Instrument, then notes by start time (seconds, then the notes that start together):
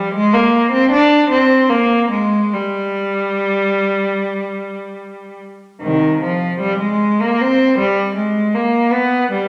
cello
Already playing: G3
0.15 G#3
0.33 A#3
0.72 C4
0.91 D4
1.30 C4
1.70 A#3
2.11 G#3
2.53 G3
5.81 C2 D#3
6.22 F3
6.61 G3
6.79 G#3
7.21 A#3
7.41 C4
7.78 G3
8.15 G#3
8.55 A#3
8.92 B3
9.31 G3